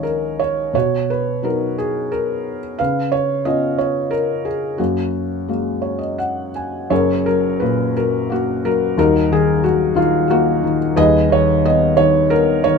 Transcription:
Already playing: C#2 D#3 F3 C#4 C#5 D#5 F5 G#5
0.03 A#4
0.39 C#5
0.73 B2 F#4 C#5
1.10 B4
1.43 F#3 B3 D#4 A#4
1.78 G#4
2.12 A#4
2.78 C#3 B4 F5
3.12 C#5
3.45 B3 C#4 F4 D#5
3.78 C#5
4.11 A#4
4.45 G#4
4.78 F#2 A#3 F#4
5.48 F#3 G#3 A#3
5.82 C#5
5.99 D#5
6.18 F#5
6.56 G#5
6.90 F#1 F#2 G#4 A#4 C#5
7.26 F#3 A#4
7.60 A#2 B4
7.97 F#3 A#4
8.30 A#3 F#4
8.65 F#3 A#4
8.97 D#1 D#2 D#4 F#4 A#4
9.31 D#3 G#4
9.63 F#3 F#4
9.95 D#3 F4
10.28 F#3 A#3 D#4 F#4
10.63 D#3
10.96 D#1 D#2 G#4 B4 D#5
11.30 D#3 C#5
11.65 B3 D#5
11.97 D#3 C#5
12.30 B3 A#4
12.64 D#3 C#5

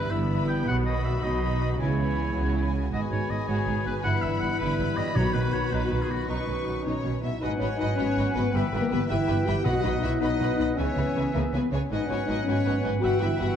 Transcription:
Already playing: E3 G3 B3 E4 B4 B5
0.11 G1 G2 B3 E4 E5 B5
0.29 E4 B4 B5
0.48 G5
0.64 B1 B2 D#3 B3 F#4 F#5 B5
0.68 F#3 F#4
0.85 F#4 B4 D#5 B5
1.05 E5
1.22 B1 B2 D#3 F#3 B3 D#4 F#4 D#5 B5
1.43 F#4 B4 B5
1.61 D#5
1.78 C#2 C#3 E3 G#3 B3 E4 B4 C#5 G#5 B5
1.98 E4 B4 G#5
2.35 C#2 C#3 F#4
2.54 E4 G#5
2.73 F#4
2.90 G#1 G#2 D#3 G#3 B3 F#4 B4 D#5 G#5 B5
3.10 G#1 G#2 D#4 C#5
3.29 G#1 G#2 B3 D#5
3.47 G#1 G#2 F#4 G#4 C#5
3.66 G#1 G#2 D#4
3.85 G#1 G#2 B3 B4
4.02 G1 G2 E3 G3 B3 E4 F#5 B5
4.22 G1 G2 B3 E5
4.40 G1 G2 G3 F#5
4.59 G1 G2 E3 G3 B3 E4 B4 B5
4.79 G1 G2 B3
4.97 G1 G2 G3 D#5
5.14 B1 B2 D#3 F#3 B3 D#4 F#4 B4 C#5 B5
5.33 B1 B2 B3 B4
5.52 B1 B2 B3 C#5
5.71 B1 B2 D#3 F#3 B3 D#4 F#4 B4 B5
5.90 B1 B2 B3
6.02 G#4
6.09 B1 B2 B3 F#4
6.27 B1 B2 D#3 F#3 C#4 D#4 F#4 B4 C#6
6.47 B1 B2 C#4
6.66 B1 B2 B3
6.83 B1 B2 C#4 D#4 C#5
7.04 B1 B2 C#4
7.21 B1 B2 D#4 E4 E5
7.25 B3
7.41 G#1 G#2 F#3 B3 D#4 F#4 B4 D#5 F#5 G#5 B5
7.57 G#2 C#4 B4 C#5 D#5
7.61 G#1 F#4 B5
7.76 G#2 D#4 F#4 B4 D#5
7.80 G#1 D#5 B5
7.95 G#1 G#2 C#4 F#4 B4 C#5 D#5 B5
8.17 G#1 G#2 F#4 B4 D#5 B5
8.33 G#1 G#2 B3 F#4 B4 D#5 B5
8.52 G1 G2 E3 B3 G4 B4 E5 G5 B5
8.73 G1 G2 G4 B4 E5 B5
8.80 A#3 A#4
8.89 G1 G2 B3 G4 B4 E5 B5
9.08 G1 G2 E4 G4 B4 E5 G5 B5
9.28 G1 G2 G4 B4 E5 B5
9.45 G1 G2 G4 B4 E5 G5 B5
9.64 B1 B2 F#3 B3 F#4 B4 D#5 F#5 B5
9.83 B1 B2 D#4 F#4 B4 D#5 B5
10.01 B1 B2 E4 F#4 B4 D#5 E5 B5
10.20 B1 B2 D#4 F#4 B4 D#5 F#5 B5
10.40 B1 B2 F#4 B4 D#5 B5
10.57 B1 B2 D#4 F#4 B4 D#5 B5
10.75 C#2 C#3 E3 C#4 B4 C#5 E5 G#5
10.79 G#4 B4
10.96 C#2 C#3 G#4 B4 E5 G#5
11.15 C#2 C#3 G#4 B4 E5 G#5
11.33 C#2 C#3 A#3 G#4 A#4 B4 E5 G#5
11.53 C#2 C#3 B3 G#4 B4 E5 G#5
11.71 C#2 C#3 C#4 G#4 B4 C#5 E5 G#5
11.90 G#1 G#2 F#3 B3 D#4 F#4 B4 D#5 F#5 G#5
12.07 G#1 G#2 C#4 F#4 B4 D#5 G#5
12.12 C#5
12.26 G#1 G#2 D#4 F#4 B4 D#5 G#5
12.44 G#1 G#2 C#4 D#5 G#5
12.49 F#4 B4 C#5
12.65 G#1 G#2 F#4 B4 D#5 G#5
12.82 G#1 G#2 B3 F#4 B4 D#5 G#5
12.86 B4
13.00 G1 G2 E3 F#4 G4 B4 E5 F#5 G5
13.04 E5 B5
13.20 G1 G2 E4 G4 B4 E5 B5
13.38 G1 G2 F#4 G4 B4 E5 F#5 B5

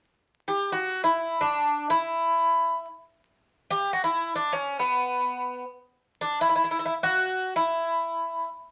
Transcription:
0.48 G4
0.72 F#4
1.04 E4
1.41 D4
1.90 E4
3.70 G4
3.93 F#4
4.04 E4
4.35 D4
4.53 C#4
4.79 B3
6.21 D4
6.41 E4
6.49 E4
6.56 E4
6.64 E4
6.71 E4
6.79 E4
6.85 E4
7.03 F#4
7.56 E4

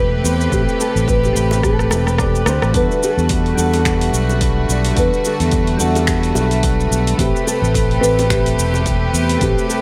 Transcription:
Already playing: E1 C3 A3 C4 G4 B4 B5
0.24 E2 C5, shaker
0.41 shaker
0.50 A1 A3 C4 G4 B4, kick, shaker
0.69 shaker
0.80 A4, shaker
0.96 A1, shaker
1.08 B4, kick, shaker
1.24 G4, high bongo, shaker
1.33 A1 A3 C4 G4 B4, shaker
1.51 high bongo, shaker
1.63 A4, kick, cross-stick, shaker
1.79 cross-stick, shaker
1.91 E1, cross-stick, high bongo, shaker
2.07 cross-stick, shaker
2.18 A3 C4 G4 D5, kick, cross-stick, shaker
2.26 G4
2.35 shaker
2.46 D2 C5, cross-stick, high bongo, shaker
2.62 A1, cross-stick, shaker
2.72 E2 D3 G3 A3 D4 F#4 A4 B4 B5, kick, open hi-hat, shaker
2.76 B4
2.91 shaker
3.03 A4, shaker
3.18 E2, shaker
3.29 kick, open hi-hat, shaker
3.46 open hi-hat
3.55 E2 G3 D4 F#4 G5, shaker
3.59 A4 F#5
3.73 open hi-hat, high bongo, shaker
3.85 finger snap, kick, open hi-hat, shaker
4.01 open hi-hat, shaker
4.13 B1, shaker
4.29 high bongo, shaker
4.41 kick, open hi-hat, shaker
4.69 B1 D5, shaker
4.85 open hi-hat, shaker
4.93 E2 G3 D4 F#4 A4, kick, open hi-hat, shaker
4.99 B4
5.14 shaker
5.25 A4, shaker
5.40 E2, open hi-hat, shaker
5.51 kick, open hi-hat, shaker
5.67 open hi-hat
5.77 E2 G3 D4 F#4 A4, shaker
5.82 F#5
5.95 open hi-hat, high bongo, shaker
6.07 finger snap, kick, open hi-hat, shaker
6.23 open hi-hat, shaker
6.35 B1, high bongo, shaker
6.51 open hi-hat, shaker
6.63 kick, open hi-hat, shaker
6.80 shaker
6.91 B1, shaker
7.07 open hi-hat, shaker
7.17 A1 C3 A3 C4 G4 B4, kick, open hi-hat, shaker
7.36 shaker
7.47 A4, shaker
7.62 A1, shaker
7.74 kick, open hi-hat, shaker
7.91 open hi-hat
8.00 A1 A3 C4 G4 B4, shaker
8.19 open hi-hat, high bongo, shaker
8.30 G4, finger snap, kick, open hi-hat, shaker
8.46 open hi-hat, shaker
8.58 E1, shaker
8.74 high bongo, shaker
8.86 kick, open hi-hat, shaker
9.13 E2, shaker
9.29 open hi-hat, shaker
9.39 A1 A3 C4 G4 B4, kick, open hi-hat, shaker
9.43 G4
9.58 shaker
9.70 A4, shaker

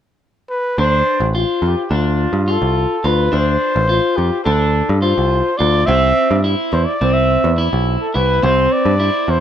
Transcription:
0.50 B4
0.78 D2 D4 C5
1.20 A1
1.35 F4
1.62 F2
1.67 G4
1.91 D2 D4
1.95 F4
2.33 G2
2.48 F4 A4
2.62 C2
3.04 D2 F4 B4
3.32 D2 D4 C5
3.76 A1
3.89 F4
4.17 F2 G4
4.45 D2 D4 A4
4.89 G2
5.02 F4 C5
5.18 C2
5.58 D2 F4 D5
5.86 C2 C4 E5
6.31 G2
6.44 E4
6.72 E2 C5
6.85 D5
7.01 C2 C4
7.13 E5
7.44 E2
7.58 E4
7.73 B1
8.00 A4
8.14 C2 E4 B4
8.43 C2 C4 C5
8.72 D5
8.85 G2
9.00 E4
9.28 E2 C5

